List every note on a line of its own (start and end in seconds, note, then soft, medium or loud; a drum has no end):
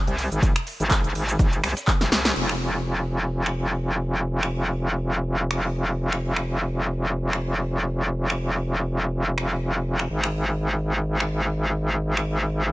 0.07 0.30 C2 loud
0.07 closed hi-hat medium
0.07 ride soft
0.07 shaker soft
0.18 snare medium
0.18 open hi-hat medium
0.18 ride medium
0.32 0.54 G#1 loud
0.32 closed hi-hat soft
0.32 shaker medium
0.43 kick loud
0.43 closed hi-hat medium
0.43 ride medium
0.43 ride loud
0.43 shaker medium
0.56 finger snap medium
0.56 closed hi-hat medium
0.56 shaker soft
0.67 open hi-hat loud
0.67 ride medium
0.80 1.13 G#1 loud
0.80 closed hi-hat soft
0.80 shaker medium
0.91 kick loud
0.91 snare loud
0.91 clap loud
0.91 closed hi-hat medium
0.91 ride medium
0.91 shaker medium
1.04 closed hi-hat medium
1.04 shaker soft
1.15 1.38 G#1 loud
1.15 open hi-hat medium
1.15 ride medium
1.28 closed hi-hat soft
1.28 ride soft
1.28 shaker medium
1.39 1.62 G#1 loud
1.39 kick loud
1.39 snare loud
1.39 closed hi-hat medium
1.39 ride medium
1.39 shaker medium
1.53 closed hi-hat medium
1.53 shaker soft
1.63 1.75 C2 loud
1.63 finger snap medium
1.63 open hi-hat loud
1.63 ride medium
1.77 snare loud
1.77 closed hi-hat soft
1.77 ride medium
1.77 shaker medium
1.88 kick loud
1.88 clap loud
1.88 closed hi-hat medium
1.88 ride medium
1.88 shaker medium
2.01 2.10 G#1 loud
2.01 snare medium
2.01 closed hi-hat medium
2.01 ride medium
2.01 shaker soft
2.12 2.34 C2 loud
2.12 snare medium
2.12 open hi-hat medium
2.12 ride medium
2.25 snare medium
2.25 closed hi-hat soft
2.25 shaker medium
2.36 10.08 F1 medium
2.36 crash medium
2.49 finger snap medium
3.46 finger snap medium
4.43 finger snap medium
5.51 finger snap medium
6.12 finger snap medium
6.36 finger snap medium
7.33 finger snap medium
8.30 finger snap medium
9.38 finger snap medium
9.99 finger snap medium
10.10 12.72 G#1 medium
10.24 finger snap medium
11.20 finger snap medium
12.17 finger snap medium